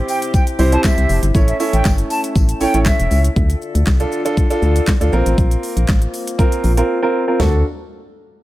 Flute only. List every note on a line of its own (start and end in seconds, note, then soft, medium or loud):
0.09 0.19 G5 medium
0.34 0.44 G5 medium
0.73 0.81 A5 medium
0.84 1.20 E5 medium
1.48 1.57 E5 medium
1.73 1.92 G5 medium
2.10 2.20 A5 medium
2.61 2.80 G5 medium
2.86 3.22 E5 medium